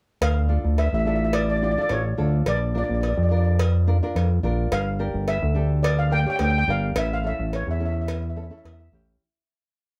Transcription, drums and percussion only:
0.22 cowbell medium
0.78 cowbell medium
1.33 cowbell medium
1.89 cowbell medium
2.46 cowbell medium
3.03 cowbell medium
3.59 cowbell medium
4.16 cowbell medium
4.72 cowbell medium
5.28 cowbell medium
5.84 cowbell medium
6.39 cowbell medium
6.96 cowbell medium
7.53 cowbell medium
8.08 cowbell medium
8.65 cowbell medium

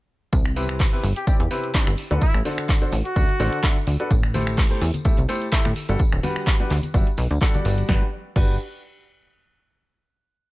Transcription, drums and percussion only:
0.33 kick loud
0.33 tambourine medium
0.45 finger snap medium
0.56 open hi-hat loud
0.56 tambourine medium
0.69 finger snap medium
0.69 closed hi-hat medium
0.79 kick loud
0.79 snare loud
0.79 clap loud
0.79 open hi-hat medium
0.93 closed hi-hat medium
1.03 open hi-hat loud
1.03 tambourine medium
1.16 closed hi-hat medium
1.16 closed hi-hat soft
1.27 kick loud
1.27 tambourine medium
1.40 closed hi-hat medium
1.40 closed hi-hat soft
1.51 snare soft
1.51 open hi-hat loud
1.51 tambourine medium
1.64 closed hi-hat medium
1.74 kick loud
1.74 snare loud
1.74 clap loud
1.74 tambourine medium
1.87 finger snap medium
1.87 closed hi-hat soft
1.97 open hi-hat loud
1.97 tambourine medium
2.11 closed hi-hat medium
2.11 closed hi-hat soft
2.21 kick loud
2.21 tambourine medium
2.34 finger snap medium
2.45 open hi-hat loud
2.45 tambourine medium
2.58 finger snap medium
2.58 closed hi-hat medium
2.69 kick loud
2.69 snare loud
2.69 clap loud
2.69 tambourine medium
2.82 closed hi-hat medium
2.92 open hi-hat loud
2.92 tambourine medium
3.05 closed hi-hat medium
3.16 kick loud
3.16 tambourine medium
3.29 closed hi-hat medium
3.39 snare soft
3.39 open hi-hat loud
3.39 tambourine medium
3.53 closed hi-hat medium
3.63 kick loud
3.63 snare loud
3.63 clap loud
3.63 tambourine medium
3.76 closed hi-hat soft
3.87 open hi-hat loud
3.87 tambourine medium
4.00 closed hi-hat medium
4.11 kick loud
4.11 tambourine soft
4.11 tambourine medium
4.23 finger snap medium
4.34 open hi-hat loud
4.34 tambourine medium
4.34 high conga medium
4.46 finger snap medium
4.46 closed hi-hat medium
4.46 tambourine medium
4.57 kick loud
4.57 snare loud
4.57 clap loud
4.57 open hi-hat medium
4.71 closed hi-hat medium
4.81 open hi-hat loud
4.81 tambourine loud
4.81 tambourine medium
4.94 closed hi-hat soft
4.94 closed hi-hat medium
4.94 tambourine medium
4.94 high conga medium
5.05 kick loud
5.05 tambourine medium
5.05 tambourine soft
5.17 closed hi-hat soft
5.28 snare medium
5.28 open hi-hat loud
5.28 tambourine medium
5.42 closed hi-hat medium
5.42 tambourine soft
5.52 kick loud
5.52 snare loud
5.52 clap loud
5.52 tambourine medium
5.52 tambourine soft
5.65 finger snap medium
5.65 closed hi-hat soft
5.65 high conga medium
5.76 open hi-hat loud
5.76 tambourine medium
5.88 closed hi-hat soft
5.88 closed hi-hat medium
5.88 tambourine medium
5.99 kick loud
5.99 tambourine soft
5.99 tambourine medium
6.12 finger snap medium
6.23 open hi-hat loud
6.23 tambourine loud
6.23 tambourine medium
6.23 high conga medium
6.36 finger snap medium
6.36 closed hi-hat medium
6.36 tambourine medium
6.47 kick loud
6.47 snare loud
6.47 clap loud
6.47 tambourine soft
6.47 tambourine medium
6.60 closed hi-hat medium
6.70 clap soft
6.70 open hi-hat loud
6.70 tambourine medium
6.83 closed hi-hat medium
6.83 tambourine medium
6.83 high conga medium
6.94 kick loud
6.94 tambourine soft
6.94 tambourine medium
7.07 closed hi-hat soft
7.17 snare soft
7.17 open hi-hat loud
7.17 tambourine loud
7.17 tambourine medium
7.31 closed hi-hat medium
7.31 tambourine medium
7.41 kick loud
7.41 snare loud
7.41 clap loud
7.41 tambourine medium
7.54 closed hi-hat soft
7.54 high conga loud
7.65 open hi-hat loud
7.65 tambourine medium
7.65 tambourine loud
7.78 closed hi-hat medium
7.78 tambourine medium
7.89 kick loud
7.89 snare medium
8.36 kick loud
8.36 crash medium

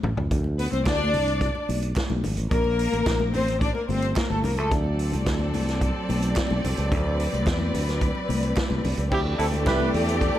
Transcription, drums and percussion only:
0.03 mid tom medium
0.03 low conga medium
0.17 floor tom medium
0.31 kick loud
0.31 closed hi-hat medium
0.31 muted conga soft
0.31 low conga medium
0.44 muted conga soft
0.59 open hi-hat medium
0.72 closed hi-hat soft
0.72 high conga medium
0.86 kick loud
0.86 snare loud
0.86 clap medium
0.86 closed hi-hat medium
0.86 muted conga soft
0.99 high conga medium
1.14 open hi-hat medium
1.14 high conga medium
1.14 low conga medium
1.28 closed hi-hat soft
1.41 kick loud
1.41 closed hi-hat soft
1.41 muted conga soft
1.55 muted conga soft
1.69 open hi-hat medium
1.69 high conga medium
1.82 closed hi-hat soft
1.96 kick loud
1.96 snare loud
1.96 clap medium
1.96 closed hi-hat medium
1.96 muted conga soft
2.10 muted conga soft
2.10 high conga medium
2.24 open hi-hat medium
2.24 low conga medium
2.37 closed hi-hat soft
2.51 kick loud
2.51 closed hi-hat medium
2.51 muted conga soft
2.51 low conga medium
2.64 muted conga soft
2.79 open hi-hat medium
2.92 closed hi-hat soft
2.92 high conga medium
3.06 kick loud
3.06 snare loud
3.06 clap medium
3.06 closed hi-hat medium
3.06 muted conga soft
3.20 high conga medium
3.34 open hi-hat medium
3.34 high conga medium
3.34 low conga medium
3.48 closed hi-hat medium
3.61 kick loud
3.61 closed hi-hat medium
3.75 muted conga soft
3.89 open hi-hat medium
3.89 high conga medium
4.02 closed hi-hat medium
4.16 kick loud
4.16 snare loud
4.16 clap medium
4.16 closed hi-hat medium
4.30 muted conga soft
4.30 high conga medium
4.44 open hi-hat medium
4.44 low conga medium
4.57 closed hi-hat soft
4.71 kick loud
4.71 closed hi-hat medium
4.71 muted conga soft
4.71 low conga medium
4.84 muted conga soft
4.99 open hi-hat medium
5.12 closed hi-hat soft
5.12 high conga medium
5.26 kick loud
5.26 snare loud
5.26 clap loud
5.26 closed hi-hat medium
5.26 muted conga soft
5.39 high conga medium
5.54 open hi-hat medium
5.54 high conga medium
5.54 low conga medium
5.69 snare soft
5.69 closed hi-hat soft
5.81 kick loud
5.81 closed hi-hat medium
6.09 open hi-hat medium
6.09 high conga medium
6.22 closed hi-hat medium
6.36 kick loud
6.36 snare loud
6.36 clap loud
6.36 closed hi-hat medium
6.50 muted conga soft
6.50 high conga medium
6.65 open hi-hat medium
6.65 low conga medium
6.77 closed hi-hat soft
6.92 kick loud
6.92 closed hi-hat medium
6.92 muted conga soft
6.92 low conga medium
7.19 open hi-hat medium
7.33 closed hi-hat soft
7.33 high conga medium
7.47 kick loud
7.47 snare loud
7.47 clap medium
7.47 closed hi-hat medium
7.47 muted conga soft
7.60 high conga medium
7.74 open hi-hat medium
7.74 high conga medium
7.74 low conga medium
7.89 snare soft
7.89 closed hi-hat medium
8.01 kick medium
8.01 closed hi-hat medium
8.01 muted conga soft
8.15 muted conga soft
8.29 open hi-hat medium
8.29 high conga medium
8.43 closed hi-hat medium
8.56 kick loud
8.56 snare loud
8.56 clap medium
8.56 closed hi-hat medium
8.56 muted conga soft
8.70 muted conga soft
8.70 high conga medium
8.85 open hi-hat medium
8.85 low conga medium
8.97 closed hi-hat soft
9.12 kick loud
9.12 crash medium
9.12 muted conga soft
9.12 low conga medium
9.39 open hi-hat medium
9.53 closed hi-hat soft
9.53 high conga medium
9.67 kick loud
9.67 snare loud
9.67 clap loud
9.67 closed hi-hat medium
9.80 muted conga soft
9.80 high conga medium
9.94 open hi-hat medium
9.94 low conga medium
10.08 closed hi-hat medium
10.21 kick loud
10.21 closed hi-hat medium
10.35 muted conga soft

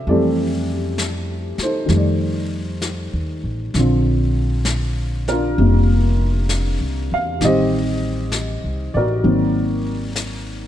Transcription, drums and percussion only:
0.06 brush sweep soft
0.98 snare soft
0.98 hi-hat pedal soft
1.58 snare soft
1.89 brush sweep soft
1.89 snare soft
2.82 snare soft
2.82 hi-hat pedal soft
3.74 brush sweep soft
3.74 snare soft
4.65 snare soft
4.65 hi-hat pedal soft
5.28 snare soft
5.58 brush sweep soft
6.49 snare soft
6.49 hi-hat pedal soft
7.41 brush sweep soft
7.41 snare soft
8.32 snare soft
8.32 hi-hat pedal soft
9.23 brush sweep soft
10.16 snare soft
10.16 hi-hat pedal medium

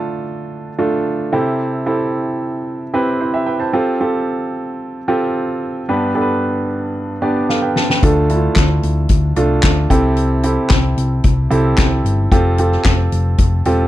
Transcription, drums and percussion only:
7.49 snare soft
7.76 snare medium
7.90 snare medium
8.03 kick medium
8.03 closed hi-hat medium
8.29 closed hi-hat medium
8.56 kick medium
8.56 snare medium
8.56 clap medium
8.56 closed hi-hat medium
8.83 closed hi-hat medium
9.09 kick medium
9.09 closed hi-hat medium
9.36 closed hi-hat medium
9.63 kick medium
9.63 snare medium
9.63 clap medium
9.63 closed hi-hat medium
9.90 kick medium
9.90 closed hi-hat medium
10.17 closed hi-hat medium
10.43 closed hi-hat medium
10.70 kick medium
10.70 snare loud
10.70 clap medium
10.70 closed hi-hat medium
10.98 closed hi-hat medium
11.24 kick medium
11.24 closed hi-hat medium
11.51 closed hi-hat medium
11.77 kick loud
11.77 snare loud
11.77 clap medium
11.77 closed hi-hat medium
12.06 closed hi-hat medium
12.32 kick medium
12.32 closed hi-hat medium
12.58 closed hi-hat medium
12.72 snare soft
12.85 kick medium
12.85 snare medium
12.85 clap medium
12.85 closed hi-hat medium
13.12 closed hi-hat medium
13.38 kick medium
13.38 closed hi-hat medium
13.65 closed hi-hat medium

